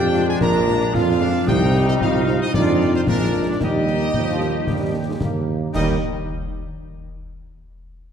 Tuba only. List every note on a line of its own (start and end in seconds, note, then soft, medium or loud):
0.00 0.32 F2 loud
0.41 0.85 A#1 loud
0.94 1.38 F2 loud
1.48 1.94 C2 loud
2.01 2.40 C2 loud
2.54 3.01 F2 loud
3.08 3.55 A#1 loud
3.61 4.08 D#2 loud
4.14 4.62 D#2 loud
4.69 5.15 D#2 loud
5.22 5.69 D#2 loud
5.74 5.97 D#2 loud